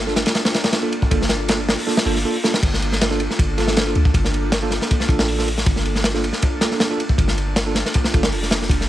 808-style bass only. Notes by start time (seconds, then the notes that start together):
Already playing: G1
1.11 G1
2.06 G1
2.63 G1
3.39 G1
3.96 D2
4.14 G1
5.09 A1
5.66 G1
7.18 G1
8.14 G1
8.32 F1
8.70 F1